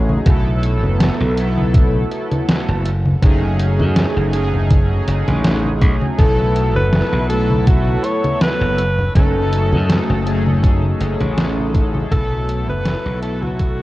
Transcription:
Already playing: A1 F#3 A3 C#4 D#4 G#4
0.09 high conga
0.25 B1 F#3 A3 B3 E4 A4, kick, closed hi-hat, high conga
0.46 high conga
0.63 closed hi-hat
0.83 F#1, high conga
1.00 snare, closed hi-hat, high conga
1.20 B1, high conga
1.35 F#3 A3 B3 E4 A4, closed hi-hat
1.58 high conga
1.74 kick, closed hi-hat, high conga
1.95 high conga
2.12 closed hi-hat
2.32 closed hi-hat, high conga
2.49 snare, closed hi-hat, high conga
2.68 F#1, high conga
2.86 closed hi-hat
3.06 high conga
3.21 F#1 F#3 A3 C#4 D#4 G#4, kick, closed hi-hat, high conga
3.43 high conga
3.59 closed hi-hat
3.79 F#2, high conga
3.96 snare, closed hi-hat, high conga
4.16 F#1, high conga
4.32 F#3 A3 C#4 D#4 G#4, closed hi-hat
4.53 high conga
4.70 kick, closed hi-hat, high conga
4.91 high conga
5.07 F#1, closed hi-hat
5.28 A1, closed hi-hat, high conga
5.44 snare, closed hi-hat, high conga
5.65 high conga
5.82 B1, kick, closed hi-hat
6.02 high conga
6.17 B1 F#3 A3 B3 E4 A4 B4 A5 E6, kick, closed hi-hat, high conga
6.39 high conga
6.56 closed hi-hat
6.76 F#1 B4, high conga
6.93 snare, closed hi-hat, high conga
7.13 B1, high conga
7.29 F#3 A3 B3 E4 A4, closed hi-hat
7.50 high conga
7.67 F#4, kick, closed hi-hat, high conga
7.87 high conga
8.04 C#5, closed hi-hat
8.24 closed hi-hat, high conga
8.41 B4, snare, closed hi-hat, high conga
8.61 F#1, high conga
8.78 A3 G#5 D#6, closed hi-hat
8.99 high conga
9.14 F#1 F#3 A3 C#4 D#4 A4, kick, closed hi-hat, high conga
9.36 high conga
9.53 closed hi-hat
9.73 F#2, high conga
9.90 snare, closed hi-hat, high conga
10.10 F#1, high conga
10.25 F#3 A3 C#4 D#4 G#4, closed hi-hat
10.47 high conga
10.63 kick, closed hi-hat, high conga
10.84 high conga
11.01 F#1, closed hi-hat
11.20 A1, closed hi-hat, high conga
11.38 snare, closed hi-hat, high conga
11.58 high conga
11.74 kick, closed hi-hat
11.95 high conga
12.10 B1 F#3 A3 B3 E4 A4 B4 A5 E6, kick, closed hi-hat, high conga
12.32 high conga
12.49 closed hi-hat
12.69 F#1 B4, high conga
12.85 snare, closed hi-hat, high conga
13.05 B1, high conga
13.20 F#3 A3 B3 E4 A4, closed hi-hat
13.42 F#4, high conga
13.59 kick, closed hi-hat, high conga

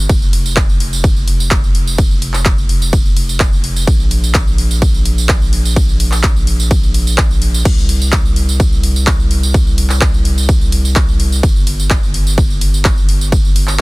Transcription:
0.09 F1, kick, ride, tambourine
0.22 tambourine
0.33 open hi-hat
0.46 tambourine
0.56 kick, clap, ride
0.69 tambourine
0.80 open hi-hat
0.93 tambourine
1.04 kick, ride, tambourine
1.17 tambourine
1.28 open hi-hat
1.40 tambourine
1.51 kick, clap, ride, tambourine
1.64 tambourine
1.75 open hi-hat
1.87 tambourine
1.98 kick, ride, tambourine
2.11 tambourine
2.22 open hi-hat
2.34 clap, tambourine
2.45 kick, clap, ride, tambourine
2.58 tambourine
2.69 open hi-hat
2.82 tambourine
2.93 kick, ride, tambourine
3.05 tambourine
3.17 open hi-hat
3.29 tambourine
3.40 kick, clap, ride, tambourine
3.53 tambourine
3.64 open hi-hat
3.76 tambourine
3.87 A#1, kick, ride, tambourine
4.00 tambourine
4.11 open hi-hat
4.24 tambourine
4.34 kick, clap, ride, tambourine
4.47 tambourine
4.58 open hi-hat
4.71 tambourine
4.82 kick, ride, tambourine
4.94 tambourine
5.05 open hi-hat
5.18 tambourine
5.29 kick, clap, ride, tambourine
5.42 tambourine
5.53 open hi-hat
5.65 tambourine
5.76 kick, ride, tambourine
5.89 tambourine
6.00 open hi-hat
6.12 clap, tambourine
6.23 kick, clap, ride
6.36 tambourine
6.47 open hi-hat
6.60 tambourine
6.71 kick, ride, tambourine
6.83 tambourine
6.94 open hi-hat
7.07 tambourine
7.18 kick, clap, ride
7.31 tambourine
7.42 open hi-hat
7.54 tambourine
7.65 C2, kick, crash, ride
7.78 tambourine
7.89 open hi-hat
8.02 tambourine
8.12 kick, clap, ride, tambourine
8.25 tambourine
8.36 open hi-hat
8.49 tambourine
8.60 kick, ride, tambourine
8.72 tambourine
8.83 open hi-hat
8.96 tambourine
9.07 kick, clap, ride, tambourine
9.20 tambourine
9.31 open hi-hat
9.43 tambourine
9.54 kick, ride, tambourine
9.67 tambourine
9.78 open hi-hat
9.89 clap, tambourine
10.01 kick, clap, ride
10.14 tambourine
10.25 open hi-hat
10.38 tambourine
10.49 kick, ride, tambourine
10.61 tambourine
10.72 open hi-hat
10.85 tambourine
10.96 kick, clap, ride, tambourine
11.09 tambourine
11.20 open hi-hat
11.32 tambourine
11.43 G1, kick, ride, tambourine
11.56 tambourine
11.67 open hi-hat
11.80 tambourine
11.90 kick, clap, ride, tambourine
12.03 tambourine
12.14 open hi-hat
12.27 tambourine
12.38 kick, ride, tambourine
12.50 tambourine
12.61 open hi-hat
12.74 tambourine
12.85 kick, clap, ride, tambourine
12.98 tambourine
13.09 open hi-hat
13.21 tambourine
13.32 kick, ride, tambourine
13.45 tambourine
13.56 open hi-hat
13.67 clap, tambourine

